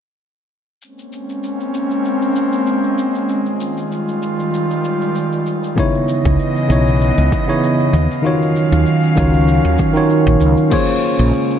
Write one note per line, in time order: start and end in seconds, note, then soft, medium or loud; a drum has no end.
0.82 5.74 G#3 medium
0.82 3.28 A#3 medium
0.82 3.28 C4 medium
0.82 3.28 C#4 medium
0.82 cabasa soft
0.99 cabasa soft
1.13 cabasa medium
1.29 cabasa soft
1.44 cabasa soft
1.60 cabasa soft
1.74 cabasa medium
1.91 cabasa soft
2.05 cabasa soft
2.22 cabasa soft
2.36 cabasa medium
2.52 cabasa soft
2.67 cabasa soft
2.84 cabasa soft
2.98 cabasa medium
3.15 cabasa soft
3.29 5.75 D#3 medium
3.29 5.75 G3 medium
3.29 5.75 F4 medium
3.29 cabasa soft
3.46 cabasa soft
3.60 cabasa medium
3.77 cabasa soft
3.92 cabasa soft
4.08 cabasa soft
4.23 cabasa medium
4.40 cabasa soft
4.54 cabasa soft
4.71 cabasa soft
4.85 cabasa medium
5.02 cabasa soft
5.15 cabasa soft
5.32 cabasa soft
5.47 cabasa medium
5.64 cabasa soft
5.76 6.66 C#3 medium
5.76 7.92 C#3 medium
5.76 7.92 E3 medium
5.76 6.66 B3 medium
5.76 7.92 B3 medium
5.76 6.67 D#4 medium
5.76 6.67 E4 medium
5.76 6.68 C#5 loud
5.76 7.92 D#5 medium
5.76 kick loud
5.76 cabasa soft
5.95 cabasa soft
6.08 cabasa medium
6.25 6.36 C#2 medium
6.25 kick loud
6.25 cabasa soft
6.39 cabasa soft
6.56 cabasa soft
6.68 7.12 B1 medium
6.68 7.44 C#3 medium
6.68 7.44 B3 medium
6.68 7.45 D#4 medium
6.68 7.45 E4 medium
6.68 7.46 C#5 medium
6.68 cabasa medium
6.87 cabasa soft
7.01 cabasa soft
7.18 7.29 C#2 medium
7.18 cabasa soft
7.32 kick loud
7.32 cabasa medium
7.47 7.92 C#3 medium
7.47 7.92 B3 medium
7.47 7.92 D#4 medium
7.47 7.92 E4 medium
7.47 7.93 C#5 medium
7.47 cabasa soft
7.63 cabasa soft
7.80 cabasa soft
7.93 8.07 D#2 medium
7.93 10.70 D#3 medium
7.93 10.70 F#3 medium
7.93 10.70 C#4 medium
7.93 10.70 F5 medium
7.93 cabasa medium
8.11 cabasa soft
8.22 9.13 D#3 medium
8.22 9.13 D#4 medium
8.22 9.14 F4 medium
8.22 9.15 F#4 medium
8.22 cabasa soft
8.27 9.15 C#5 medium
8.42 cabasa soft
8.56 cabasa medium
8.72 8.84 D#2 medium
8.72 cabasa soft
8.86 cabasa soft
9.03 cabasa soft
9.16 9.60 C#2 medium
9.16 9.91 D#3 medium
9.16 9.92 D#4 medium
9.16 9.92 F4 medium
9.16 9.93 F#4 medium
9.16 9.93 C#5 medium
9.16 kick medium
9.16 cabasa medium
9.33 cabasa soft
9.48 cabasa soft
9.64 9.76 D#2 medium
9.64 cabasa soft
9.78 kick medium
9.78 cabasa medium
9.93 10.68 D#3 medium
9.93 10.68 D#4 medium
9.93 10.69 F4 medium
9.93 10.69 F#4 medium
9.93 10.69 C#5 loud
9.93 cabasa soft
10.10 cabasa soft
10.26 10.38 A#1 medium
10.26 kick medium
10.26 cabasa soft
10.40 10.54 C#2 medium
10.40 cabasa medium
10.57 cabasa soft
10.70 11.59 C#3 medium
10.70 11.59 G#3 medium
10.70 11.59 A#3 medium
10.70 11.59 C#4 medium
10.70 11.59 F4 medium
10.70 11.59 G#4 medium
10.70 11.59 C5 medium
10.70 11.59 C#5 loud
10.70 kick loud
10.70 crash medium
10.70 cabasa soft
10.88 cabasa soft
11.03 cabasa medium
11.19 11.31 A#1 medium
11.19 cabasa soft
11.33 cabasa soft
11.50 cabasa soft